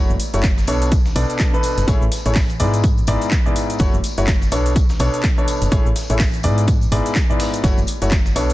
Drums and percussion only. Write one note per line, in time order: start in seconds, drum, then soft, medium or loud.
0.10 cabasa soft
0.20 open hi-hat loud
0.20 tambourine medium
0.34 closed hi-hat soft
0.34 tambourine soft
0.34 cabasa medium
0.43 kick loud
0.43 snare loud
0.43 clap loud
0.43 closed hi-hat medium
0.43 tambourine medium
0.43 cabasa medium
0.58 snare medium
0.58 tambourine soft
0.58 cabasa soft
0.67 open hi-hat loud
0.67 tambourine medium
0.82 closed hi-hat medium
0.82 tambourine soft
0.82 cabasa medium
0.92 kick loud
0.92 closed hi-hat medium
0.92 tambourine medium
0.92 cabasa medium
1.06 snare medium
1.06 tambourine soft
1.06 cabasa soft
1.16 open hi-hat loud
1.16 tambourine medium
1.29 closed hi-hat medium
1.29 tambourine soft
1.29 cabasa medium
1.39 kick loud
1.39 snare loud
1.39 clap loud
1.39 closed hi-hat medium
1.39 tambourine medium
1.39 cabasa medium
1.54 cabasa soft
1.63 open hi-hat loud
1.63 tambourine loud
1.63 tambourine medium
1.77 closed hi-hat soft
1.77 closed hi-hat medium
1.77 tambourine soft
1.77 cabasa medium
1.88 kick loud
1.88 closed hi-hat medium
1.88 tambourine medium
1.88 cabasa medium
2.02 cabasa soft
2.12 snare medium
2.12 open hi-hat loud
2.12 tambourine loud
2.12 tambourine medium
2.26 closed hi-hat soft
2.26 tambourine soft
2.26 cabasa medium
2.35 kick loud
2.35 snare loud
2.35 clap loud
2.35 closed hi-hat medium
2.35 open hi-hat medium
2.35 tambourine medium
2.35 cabasa medium
2.50 closed hi-hat soft
2.50 tambourine soft
2.50 cabasa soft
2.60 open hi-hat loud
2.60 tambourine medium
2.60 tambourine loud
2.73 closed hi-hat medium
2.73 tambourine soft
2.73 cabasa medium
2.83 kick loud
2.83 closed hi-hat medium
2.83 tambourine soft
2.83 tambourine medium
2.83 cabasa medium
2.98 tambourine soft
2.98 cabasa soft
3.07 open hi-hat loud
3.07 tambourine loud
3.07 tambourine medium
3.21 closed hi-hat medium
3.21 tambourine soft
3.21 cabasa medium
3.31 kick loud
3.31 snare loud
3.31 clap loud
3.31 closed hi-hat medium
3.31 tambourine medium
3.31 cabasa medium
3.46 cabasa soft
3.56 open hi-hat loud
3.56 tambourine medium
3.70 closed hi-hat medium
3.70 tambourine soft
3.70 cabasa medium
3.79 kick loud
3.79 closed hi-hat medium
3.79 tambourine medium
3.79 cabasa medium
3.94 cabasa soft
4.04 open hi-hat loud
4.04 tambourine medium
4.18 closed hi-hat medium
4.18 tambourine soft
4.18 cabasa medium
4.27 kick loud
4.27 snare loud
4.27 clap loud
4.27 closed hi-hat medium
4.27 tambourine medium
4.27 cabasa medium
4.42 snare soft
4.42 tambourine soft
4.42 cabasa soft
4.52 open hi-hat loud
4.52 tambourine medium
4.52 tambourine loud
4.66 closed hi-hat medium
4.66 tambourine soft
4.66 cabasa medium
4.76 kick loud
4.76 closed hi-hat medium
4.76 tambourine medium
4.76 tambourine soft
4.76 cabasa medium
4.89 snare medium
4.89 tambourine soft
4.89 cabasa soft
4.99 open hi-hat loud
4.99 tambourine medium
5.14 closed hi-hat medium
5.14 tambourine soft
5.14 cabasa medium
5.23 kick loud
5.23 snare loud
5.23 clap loud
5.23 closed hi-hat medium
5.23 tambourine soft
5.23 tambourine medium
5.23 cabasa medium
5.38 cabasa soft
5.48 open hi-hat loud
5.48 tambourine medium
5.62 closed hi-hat medium
5.62 closed hi-hat soft
5.62 tambourine soft
5.62 cabasa medium
5.72 kick loud
5.72 closed hi-hat medium
5.72 tambourine medium
5.72 tambourine soft
5.72 cabasa medium
5.86 cabasa soft
5.96 snare medium
5.96 open hi-hat loud
5.96 tambourine medium
6.10 closed hi-hat medium
6.10 tambourine soft
6.10 cabasa medium
6.19 kick loud
6.19 snare loud
6.19 clap loud
6.19 closed hi-hat medium
6.19 open hi-hat medium
6.19 tambourine medium
6.19 cabasa medium
6.34 closed hi-hat soft
6.34 tambourine soft
6.34 cabasa soft
6.43 open hi-hat loud
6.43 tambourine medium
6.58 closed hi-hat medium
6.58 tambourine soft
6.58 cabasa medium
6.67 kick loud
6.67 closed hi-hat medium
6.67 tambourine medium
6.67 cabasa medium
6.81 tambourine soft
6.81 cabasa soft
6.92 open hi-hat loud
6.92 tambourine medium
7.06 closed hi-hat medium
7.06 tambourine soft
7.06 cabasa medium
7.15 kick loud
7.15 snare loud
7.15 clap loud
7.15 closed hi-hat medium
7.15 tambourine soft
7.15 tambourine medium
7.15 cabasa medium
7.30 cabasa soft
7.40 snare loud
7.40 open hi-hat medium
7.40 open hi-hat loud
7.40 tambourine medium
7.54 closed hi-hat soft
7.54 closed hi-hat medium
7.54 tambourine soft
7.54 cabasa medium
7.64 kick loud
7.64 closed hi-hat medium
7.64 tambourine medium
7.64 cabasa medium
7.78 tambourine soft
7.78 cabasa soft
7.87 open hi-hat loud
7.87 tambourine medium
8.02 closed hi-hat medium
8.02 tambourine soft
8.02 cabasa medium
8.11 kick loud
8.11 snare loud
8.11 clap loud
8.11 closed hi-hat medium
8.11 tambourine medium
8.11 tambourine soft
8.11 cabasa medium
8.26 snare medium
8.26 tambourine soft
8.26 cabasa soft
8.36 open hi-hat loud
8.36 tambourine medium
8.50 closed hi-hat medium
8.50 tambourine soft
8.50 cabasa medium